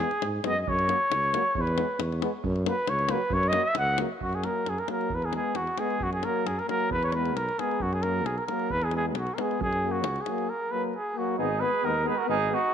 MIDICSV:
0, 0, Header, 1, 7, 480
1, 0, Start_track
1, 0, Tempo, 446429
1, 718, Time_signature, 2, 2, 24, 8
1, 13697, End_track
2, 0, Start_track
2, 0, Title_t, "Cornet"
2, 0, Program_c, 0, 56
2, 0, Note_on_c, 0, 68, 96
2, 318, Note_off_c, 0, 68, 0
2, 499, Note_on_c, 0, 75, 88
2, 650, Note_off_c, 0, 75, 0
2, 650, Note_on_c, 0, 75, 58
2, 737, Note_on_c, 0, 73, 89
2, 753, Note_off_c, 0, 75, 0
2, 1732, Note_on_c, 0, 71, 73
2, 1749, Note_off_c, 0, 73, 0
2, 2180, Note_off_c, 0, 71, 0
2, 2893, Note_on_c, 0, 71, 78
2, 3110, Note_on_c, 0, 73, 75
2, 3126, Note_off_c, 0, 71, 0
2, 3345, Note_on_c, 0, 71, 78
2, 3361, Note_off_c, 0, 73, 0
2, 3587, Note_on_c, 0, 73, 85
2, 3603, Note_off_c, 0, 71, 0
2, 3745, Note_on_c, 0, 75, 93
2, 3761, Note_off_c, 0, 73, 0
2, 3914, Note_on_c, 0, 76, 90
2, 3931, Note_off_c, 0, 75, 0
2, 4059, Note_off_c, 0, 76, 0
2, 4066, Note_on_c, 0, 78, 88
2, 4288, Note_off_c, 0, 78, 0
2, 4546, Note_on_c, 0, 66, 71
2, 4678, Note_on_c, 0, 68, 59
2, 4694, Note_off_c, 0, 66, 0
2, 4779, Note_on_c, 0, 70, 69
2, 4795, Note_off_c, 0, 68, 0
2, 5047, Note_on_c, 0, 68, 62
2, 5063, Note_off_c, 0, 70, 0
2, 5155, Note_on_c, 0, 70, 59
2, 5171, Note_off_c, 0, 68, 0
2, 5266, Note_off_c, 0, 70, 0
2, 5280, Note_on_c, 0, 70, 74
2, 5535, Note_on_c, 0, 71, 68
2, 5551, Note_off_c, 0, 70, 0
2, 5647, Note_on_c, 0, 68, 69
2, 5664, Note_off_c, 0, 71, 0
2, 5753, Note_off_c, 0, 68, 0
2, 5767, Note_on_c, 0, 68, 75
2, 5981, Note_on_c, 0, 66, 66
2, 5997, Note_off_c, 0, 68, 0
2, 6229, Note_on_c, 0, 68, 76
2, 6245, Note_off_c, 0, 66, 0
2, 6489, Note_on_c, 0, 66, 75
2, 6505, Note_off_c, 0, 68, 0
2, 6586, Note_off_c, 0, 66, 0
2, 6593, Note_on_c, 0, 68, 68
2, 6716, Note_on_c, 0, 70, 74
2, 6732, Note_off_c, 0, 68, 0
2, 6958, Note_on_c, 0, 68, 67
2, 6974, Note_off_c, 0, 70, 0
2, 7088, Note_on_c, 0, 70, 68
2, 7104, Note_off_c, 0, 68, 0
2, 7194, Note_off_c, 0, 70, 0
2, 7200, Note_on_c, 0, 70, 82
2, 7421, Note_off_c, 0, 70, 0
2, 7436, Note_on_c, 0, 71, 76
2, 7568, Note_on_c, 0, 73, 78
2, 7584, Note_off_c, 0, 71, 0
2, 7586, Note_on_c, 0, 71, 67
2, 7602, Note_off_c, 0, 73, 0
2, 7625, Note_on_c, 0, 73, 79
2, 7641, Note_off_c, 0, 71, 0
2, 7661, Note_off_c, 0, 73, 0
2, 7667, Note_on_c, 0, 71, 68
2, 7917, Note_on_c, 0, 70, 74
2, 7933, Note_off_c, 0, 71, 0
2, 8167, Note_on_c, 0, 68, 74
2, 8183, Note_off_c, 0, 70, 0
2, 8410, Note_on_c, 0, 66, 72
2, 8426, Note_off_c, 0, 68, 0
2, 8534, Note_on_c, 0, 68, 68
2, 8550, Note_off_c, 0, 66, 0
2, 8633, Note_on_c, 0, 70, 75
2, 8649, Note_off_c, 0, 68, 0
2, 8883, Note_on_c, 0, 68, 63
2, 8899, Note_off_c, 0, 70, 0
2, 9010, Note_on_c, 0, 70, 62
2, 9026, Note_off_c, 0, 68, 0
2, 9097, Note_off_c, 0, 70, 0
2, 9103, Note_on_c, 0, 70, 77
2, 9368, Note_on_c, 0, 71, 88
2, 9384, Note_off_c, 0, 70, 0
2, 9510, Note_on_c, 0, 68, 65
2, 9526, Note_off_c, 0, 71, 0
2, 9613, Note_off_c, 0, 68, 0
2, 9643, Note_on_c, 0, 68, 78
2, 9742, Note_off_c, 0, 68, 0
2, 9878, Note_on_c, 0, 66, 64
2, 10047, Note_on_c, 0, 70, 50
2, 10064, Note_off_c, 0, 66, 0
2, 10121, Note_on_c, 0, 68, 72
2, 10138, Note_off_c, 0, 70, 0
2, 10343, Note_off_c, 0, 68, 0
2, 10347, Note_on_c, 0, 68, 88
2, 10665, Note_on_c, 0, 66, 74
2, 10681, Note_off_c, 0, 68, 0
2, 10981, Note_on_c, 0, 68, 60
2, 10997, Note_off_c, 0, 66, 0
2, 11287, Note_on_c, 0, 70, 70
2, 11303, Note_off_c, 0, 68, 0
2, 11518, Note_on_c, 0, 71, 76
2, 11534, Note_off_c, 0, 70, 0
2, 11648, Note_off_c, 0, 71, 0
2, 11787, Note_on_c, 0, 68, 69
2, 12023, Note_on_c, 0, 66, 63
2, 12040, Note_off_c, 0, 68, 0
2, 12238, Note_off_c, 0, 66, 0
2, 12244, Note_on_c, 0, 68, 79
2, 12473, Note_on_c, 0, 71, 92
2, 12489, Note_off_c, 0, 68, 0
2, 12745, Note_on_c, 0, 70, 84
2, 12761, Note_off_c, 0, 71, 0
2, 12973, Note_off_c, 0, 70, 0
2, 12990, Note_on_c, 0, 71, 78
2, 13106, Note_on_c, 0, 70, 65
2, 13122, Note_off_c, 0, 71, 0
2, 13210, Note_off_c, 0, 70, 0
2, 13228, Note_on_c, 0, 68, 89
2, 13487, Note_on_c, 0, 66, 83
2, 13503, Note_off_c, 0, 68, 0
2, 13697, Note_off_c, 0, 66, 0
2, 13697, End_track
3, 0, Start_track
3, 0, Title_t, "Trumpet"
3, 0, Program_c, 1, 56
3, 12233, Note_on_c, 1, 63, 74
3, 12506, Note_on_c, 1, 68, 66
3, 12523, Note_off_c, 1, 63, 0
3, 12747, Note_on_c, 1, 63, 77
3, 12763, Note_off_c, 1, 68, 0
3, 12948, Note_off_c, 1, 63, 0
3, 12954, Note_on_c, 1, 68, 61
3, 13086, Note_on_c, 1, 66, 67
3, 13102, Note_off_c, 1, 68, 0
3, 13200, Note_off_c, 1, 66, 0
3, 13212, Note_on_c, 1, 63, 86
3, 13449, Note_off_c, 1, 63, 0
3, 13449, Note_on_c, 1, 63, 70
3, 13697, Note_off_c, 1, 63, 0
3, 13697, End_track
4, 0, Start_track
4, 0, Title_t, "Trombone"
4, 0, Program_c, 2, 57
4, 8, Note_on_c, 2, 59, 50
4, 102, Note_off_c, 2, 59, 0
4, 485, Note_on_c, 2, 59, 55
4, 579, Note_off_c, 2, 59, 0
4, 936, Note_on_c, 2, 58, 45
4, 1036, Note_off_c, 2, 58, 0
4, 1428, Note_on_c, 2, 58, 68
4, 1525, Note_off_c, 2, 58, 0
4, 1893, Note_on_c, 2, 59, 54
4, 1992, Note_off_c, 2, 59, 0
4, 2370, Note_on_c, 2, 59, 70
4, 2470, Note_off_c, 2, 59, 0
4, 2846, Note_on_c, 2, 58, 62
4, 2946, Note_off_c, 2, 58, 0
4, 3318, Note_on_c, 2, 58, 65
4, 3419, Note_off_c, 2, 58, 0
4, 3784, Note_on_c, 2, 58, 60
4, 3888, Note_off_c, 2, 58, 0
4, 4282, Note_on_c, 2, 58, 55
4, 4382, Note_off_c, 2, 58, 0
4, 4758, Note_on_c, 2, 58, 39
4, 5006, Note_off_c, 2, 58, 0
4, 5243, Note_on_c, 2, 58, 53
4, 5489, Note_off_c, 2, 58, 0
4, 5743, Note_on_c, 2, 59, 47
4, 5980, Note_off_c, 2, 59, 0
4, 6216, Note_on_c, 2, 59, 57
4, 6458, Note_off_c, 2, 59, 0
4, 6695, Note_on_c, 2, 58, 49
4, 6939, Note_off_c, 2, 58, 0
4, 7171, Note_on_c, 2, 58, 54
4, 7418, Note_off_c, 2, 58, 0
4, 7678, Note_on_c, 2, 59, 51
4, 7912, Note_off_c, 2, 59, 0
4, 8168, Note_on_c, 2, 59, 48
4, 8399, Note_off_c, 2, 59, 0
4, 8631, Note_on_c, 2, 58, 43
4, 8871, Note_off_c, 2, 58, 0
4, 9123, Note_on_c, 2, 58, 61
4, 9358, Note_off_c, 2, 58, 0
4, 9606, Note_on_c, 2, 59, 47
4, 9840, Note_off_c, 2, 59, 0
4, 10082, Note_on_c, 2, 59, 61
4, 10319, Note_off_c, 2, 59, 0
4, 10569, Note_on_c, 2, 58, 51
4, 10802, Note_off_c, 2, 58, 0
4, 11037, Note_on_c, 2, 58, 56
4, 11276, Note_off_c, 2, 58, 0
4, 11511, Note_on_c, 2, 58, 47
4, 11752, Note_off_c, 2, 58, 0
4, 11995, Note_on_c, 2, 58, 54
4, 12230, Note_off_c, 2, 58, 0
4, 12236, Note_on_c, 2, 59, 63
4, 12334, Note_off_c, 2, 59, 0
4, 12483, Note_on_c, 2, 59, 52
4, 12579, Note_off_c, 2, 59, 0
4, 12718, Note_on_c, 2, 59, 60
4, 12814, Note_off_c, 2, 59, 0
4, 12944, Note_on_c, 2, 59, 62
4, 13043, Note_off_c, 2, 59, 0
4, 13185, Note_on_c, 2, 59, 73
4, 13284, Note_off_c, 2, 59, 0
4, 13430, Note_on_c, 2, 59, 54
4, 13527, Note_off_c, 2, 59, 0
4, 13697, End_track
5, 0, Start_track
5, 0, Title_t, "Euphonium"
5, 0, Program_c, 3, 58
5, 480, Note_on_c, 3, 56, 57
5, 576, Note_off_c, 3, 56, 0
5, 952, Note_on_c, 3, 54, 61
5, 1049, Note_off_c, 3, 54, 0
5, 1453, Note_on_c, 3, 54, 70
5, 1545, Note_off_c, 3, 54, 0
5, 1911, Note_on_c, 3, 56, 64
5, 2007, Note_off_c, 3, 56, 0
5, 2390, Note_on_c, 3, 56, 70
5, 2485, Note_off_c, 3, 56, 0
5, 2871, Note_on_c, 3, 54, 62
5, 2966, Note_off_c, 3, 54, 0
5, 3359, Note_on_c, 3, 54, 70
5, 3452, Note_off_c, 3, 54, 0
5, 3826, Note_on_c, 3, 54, 67
5, 3922, Note_off_c, 3, 54, 0
5, 4294, Note_on_c, 3, 54, 64
5, 4392, Note_off_c, 3, 54, 0
5, 4772, Note_on_c, 3, 54, 50
5, 5013, Note_off_c, 3, 54, 0
5, 5246, Note_on_c, 3, 54, 64
5, 5491, Note_off_c, 3, 54, 0
5, 5733, Note_on_c, 3, 56, 50
5, 5975, Note_off_c, 3, 56, 0
5, 6221, Note_on_c, 3, 56, 62
5, 6460, Note_off_c, 3, 56, 0
5, 6698, Note_on_c, 3, 54, 55
5, 6940, Note_off_c, 3, 54, 0
5, 7171, Note_on_c, 3, 54, 62
5, 7418, Note_off_c, 3, 54, 0
5, 7671, Note_on_c, 3, 56, 47
5, 7909, Note_off_c, 3, 56, 0
5, 8145, Note_on_c, 3, 56, 53
5, 8387, Note_off_c, 3, 56, 0
5, 8642, Note_on_c, 3, 54, 46
5, 8877, Note_off_c, 3, 54, 0
5, 9119, Note_on_c, 3, 54, 53
5, 9356, Note_off_c, 3, 54, 0
5, 9600, Note_on_c, 3, 56, 50
5, 9837, Note_off_c, 3, 56, 0
5, 10087, Note_on_c, 3, 56, 63
5, 10321, Note_off_c, 3, 56, 0
5, 10588, Note_on_c, 3, 54, 64
5, 10812, Note_off_c, 3, 54, 0
5, 11045, Note_on_c, 3, 54, 59
5, 11280, Note_off_c, 3, 54, 0
5, 11535, Note_on_c, 3, 54, 54
5, 11765, Note_off_c, 3, 54, 0
5, 12016, Note_on_c, 3, 54, 53
5, 12245, Note_off_c, 3, 54, 0
5, 12272, Note_on_c, 3, 56, 47
5, 12362, Note_off_c, 3, 56, 0
5, 12507, Note_on_c, 3, 56, 52
5, 12598, Note_off_c, 3, 56, 0
5, 12737, Note_on_c, 3, 56, 49
5, 12830, Note_off_c, 3, 56, 0
5, 12981, Note_on_c, 3, 56, 65
5, 13073, Note_off_c, 3, 56, 0
5, 13206, Note_on_c, 3, 56, 67
5, 13301, Note_off_c, 3, 56, 0
5, 13441, Note_on_c, 3, 56, 66
5, 13537, Note_off_c, 3, 56, 0
5, 13697, End_track
6, 0, Start_track
6, 0, Title_t, "Tuba"
6, 0, Program_c, 4, 58
6, 245, Note_on_c, 4, 44, 84
6, 458, Note_off_c, 4, 44, 0
6, 478, Note_on_c, 4, 42, 71
6, 694, Note_off_c, 4, 42, 0
6, 737, Note_on_c, 4, 42, 95
6, 994, Note_off_c, 4, 42, 0
6, 1185, Note_on_c, 4, 37, 80
6, 1450, Note_off_c, 4, 37, 0
6, 1673, Note_on_c, 4, 40, 109
6, 1936, Note_off_c, 4, 40, 0
6, 2132, Note_on_c, 4, 40, 99
6, 2400, Note_off_c, 4, 40, 0
6, 2624, Note_on_c, 4, 42, 114
6, 2888, Note_off_c, 4, 42, 0
6, 3106, Note_on_c, 4, 37, 87
6, 3369, Note_off_c, 4, 37, 0
6, 3567, Note_on_c, 4, 42, 116
6, 3835, Note_off_c, 4, 42, 0
6, 4057, Note_on_c, 4, 37, 92
6, 4323, Note_off_c, 4, 37, 0
6, 4538, Note_on_c, 4, 42, 82
6, 4804, Note_off_c, 4, 42, 0
6, 5010, Note_on_c, 4, 42, 78
6, 5146, Note_off_c, 4, 42, 0
6, 5503, Note_on_c, 4, 40, 81
6, 5769, Note_off_c, 4, 40, 0
6, 5980, Note_on_c, 4, 40, 68
6, 6114, Note_off_c, 4, 40, 0
6, 6451, Note_on_c, 4, 42, 85
6, 6721, Note_off_c, 4, 42, 0
6, 6943, Note_on_c, 4, 42, 80
6, 7078, Note_off_c, 4, 42, 0
6, 7424, Note_on_c, 4, 40, 94
6, 7909, Note_on_c, 4, 35, 82
6, 7925, Note_off_c, 4, 40, 0
6, 8043, Note_off_c, 4, 35, 0
6, 8391, Note_on_c, 4, 42, 98
6, 8873, Note_on_c, 4, 35, 87
6, 8889, Note_off_c, 4, 42, 0
6, 9007, Note_off_c, 4, 35, 0
6, 9358, Note_on_c, 4, 40, 93
6, 9837, Note_on_c, 4, 35, 88
6, 9853, Note_off_c, 4, 40, 0
6, 9971, Note_off_c, 4, 35, 0
6, 10318, Note_on_c, 4, 42, 92
6, 10815, Note_on_c, 4, 37, 81
6, 10831, Note_off_c, 4, 42, 0
6, 10944, Note_off_c, 4, 37, 0
6, 12244, Note_on_c, 4, 32, 99
6, 12507, Note_off_c, 4, 32, 0
6, 12730, Note_on_c, 4, 39, 84
6, 12991, Note_off_c, 4, 39, 0
6, 13212, Note_on_c, 4, 32, 101
6, 13472, Note_off_c, 4, 32, 0
6, 13697, End_track
7, 0, Start_track
7, 0, Title_t, "Davul"
7, 120, Note_on_c, 9, 37, 30
7, 228, Note_off_c, 9, 37, 0
7, 238, Note_on_c, 9, 37, 62
7, 345, Note_off_c, 9, 37, 0
7, 474, Note_on_c, 9, 37, 63
7, 581, Note_off_c, 9, 37, 0
7, 724, Note_on_c, 9, 43, 82
7, 832, Note_off_c, 9, 43, 0
7, 846, Note_on_c, 9, 37, 27
7, 954, Note_off_c, 9, 37, 0
7, 958, Note_on_c, 9, 37, 55
7, 1065, Note_off_c, 9, 37, 0
7, 1199, Note_on_c, 9, 37, 72
7, 1307, Note_off_c, 9, 37, 0
7, 1329, Note_on_c, 9, 37, 22
7, 1436, Note_off_c, 9, 37, 0
7, 1441, Note_on_c, 9, 37, 63
7, 1548, Note_off_c, 9, 37, 0
7, 1665, Note_on_c, 9, 43, 81
7, 1773, Note_off_c, 9, 43, 0
7, 1798, Note_on_c, 9, 37, 28
7, 1906, Note_off_c, 9, 37, 0
7, 1910, Note_on_c, 9, 37, 60
7, 2018, Note_off_c, 9, 37, 0
7, 2146, Note_on_c, 9, 37, 66
7, 2254, Note_off_c, 9, 37, 0
7, 2284, Note_on_c, 9, 37, 28
7, 2390, Note_off_c, 9, 37, 0
7, 2390, Note_on_c, 9, 37, 61
7, 2497, Note_off_c, 9, 37, 0
7, 2621, Note_on_c, 9, 43, 82
7, 2729, Note_off_c, 9, 43, 0
7, 2750, Note_on_c, 9, 37, 25
7, 2857, Note_off_c, 9, 37, 0
7, 2865, Note_on_c, 9, 37, 66
7, 2972, Note_off_c, 9, 37, 0
7, 3091, Note_on_c, 9, 37, 62
7, 3199, Note_off_c, 9, 37, 0
7, 3212, Note_on_c, 9, 37, 22
7, 3318, Note_off_c, 9, 37, 0
7, 3318, Note_on_c, 9, 37, 65
7, 3425, Note_off_c, 9, 37, 0
7, 3549, Note_on_c, 9, 43, 83
7, 3657, Note_off_c, 9, 43, 0
7, 3690, Note_on_c, 9, 37, 28
7, 3793, Note_off_c, 9, 37, 0
7, 3793, Note_on_c, 9, 37, 67
7, 3900, Note_off_c, 9, 37, 0
7, 4031, Note_on_c, 9, 37, 66
7, 4139, Note_off_c, 9, 37, 0
7, 4280, Note_on_c, 9, 37, 69
7, 4387, Note_off_c, 9, 37, 0
7, 4524, Note_on_c, 9, 43, 62
7, 4632, Note_off_c, 9, 43, 0
7, 4652, Note_on_c, 9, 37, 19
7, 4760, Note_off_c, 9, 37, 0
7, 4769, Note_on_c, 9, 37, 45
7, 4876, Note_off_c, 9, 37, 0
7, 5015, Note_on_c, 9, 37, 48
7, 5122, Note_off_c, 9, 37, 0
7, 5143, Note_on_c, 9, 37, 21
7, 5248, Note_off_c, 9, 37, 0
7, 5248, Note_on_c, 9, 37, 50
7, 5356, Note_off_c, 9, 37, 0
7, 5386, Note_on_c, 9, 37, 18
7, 5481, Note_on_c, 9, 43, 74
7, 5493, Note_off_c, 9, 37, 0
7, 5589, Note_off_c, 9, 43, 0
7, 5614, Note_on_c, 9, 37, 21
7, 5722, Note_off_c, 9, 37, 0
7, 5727, Note_on_c, 9, 37, 51
7, 5835, Note_off_c, 9, 37, 0
7, 5967, Note_on_c, 9, 37, 52
7, 6074, Note_off_c, 9, 37, 0
7, 6100, Note_on_c, 9, 37, 23
7, 6208, Note_off_c, 9, 37, 0
7, 6210, Note_on_c, 9, 37, 51
7, 6318, Note_off_c, 9, 37, 0
7, 6348, Note_on_c, 9, 37, 18
7, 6454, Note_on_c, 9, 43, 71
7, 6456, Note_off_c, 9, 37, 0
7, 6561, Note_off_c, 9, 43, 0
7, 6588, Note_on_c, 9, 37, 24
7, 6696, Note_off_c, 9, 37, 0
7, 6697, Note_on_c, 9, 37, 52
7, 6805, Note_off_c, 9, 37, 0
7, 6952, Note_on_c, 9, 37, 59
7, 7060, Note_off_c, 9, 37, 0
7, 7086, Note_on_c, 9, 37, 18
7, 7194, Note_off_c, 9, 37, 0
7, 7196, Note_on_c, 9, 37, 48
7, 7303, Note_off_c, 9, 37, 0
7, 7313, Note_on_c, 9, 37, 17
7, 7421, Note_off_c, 9, 37, 0
7, 7427, Note_on_c, 9, 43, 74
7, 7535, Note_off_c, 9, 43, 0
7, 7555, Note_on_c, 9, 37, 25
7, 7660, Note_off_c, 9, 37, 0
7, 7660, Note_on_c, 9, 37, 44
7, 7767, Note_off_c, 9, 37, 0
7, 7801, Note_on_c, 9, 37, 27
7, 7908, Note_off_c, 9, 37, 0
7, 7921, Note_on_c, 9, 37, 51
7, 8029, Note_off_c, 9, 37, 0
7, 8050, Note_on_c, 9, 37, 22
7, 8157, Note_off_c, 9, 37, 0
7, 8164, Note_on_c, 9, 37, 50
7, 8272, Note_off_c, 9, 37, 0
7, 8294, Note_on_c, 9, 37, 18
7, 8384, Note_on_c, 9, 43, 64
7, 8401, Note_off_c, 9, 37, 0
7, 8491, Note_off_c, 9, 43, 0
7, 8523, Note_on_c, 9, 37, 22
7, 8630, Note_off_c, 9, 37, 0
7, 8634, Note_on_c, 9, 37, 42
7, 8741, Note_off_c, 9, 37, 0
7, 8881, Note_on_c, 9, 37, 48
7, 8989, Note_off_c, 9, 37, 0
7, 9008, Note_on_c, 9, 37, 18
7, 9116, Note_off_c, 9, 37, 0
7, 9122, Note_on_c, 9, 37, 49
7, 9230, Note_off_c, 9, 37, 0
7, 9241, Note_on_c, 9, 37, 18
7, 9349, Note_off_c, 9, 37, 0
7, 9353, Note_on_c, 9, 43, 57
7, 9461, Note_off_c, 9, 43, 0
7, 9477, Note_on_c, 9, 37, 23
7, 9584, Note_off_c, 9, 37, 0
7, 9584, Note_on_c, 9, 37, 45
7, 9692, Note_off_c, 9, 37, 0
7, 9839, Note_on_c, 9, 37, 54
7, 9946, Note_off_c, 9, 37, 0
7, 9964, Note_on_c, 9, 37, 22
7, 10072, Note_off_c, 9, 37, 0
7, 10089, Note_on_c, 9, 37, 60
7, 10196, Note_off_c, 9, 37, 0
7, 10227, Note_on_c, 9, 37, 21
7, 10331, Note_on_c, 9, 43, 88
7, 10334, Note_off_c, 9, 37, 0
7, 10438, Note_off_c, 9, 43, 0
7, 10458, Note_on_c, 9, 37, 31
7, 10565, Note_off_c, 9, 37, 0
7, 10794, Note_on_c, 9, 37, 67
7, 10902, Note_off_c, 9, 37, 0
7, 10922, Note_on_c, 9, 37, 22
7, 11029, Note_off_c, 9, 37, 0
7, 11033, Note_on_c, 9, 37, 50
7, 11140, Note_off_c, 9, 37, 0
7, 11163, Note_on_c, 9, 37, 18
7, 11270, Note_off_c, 9, 37, 0
7, 13697, End_track
0, 0, End_of_file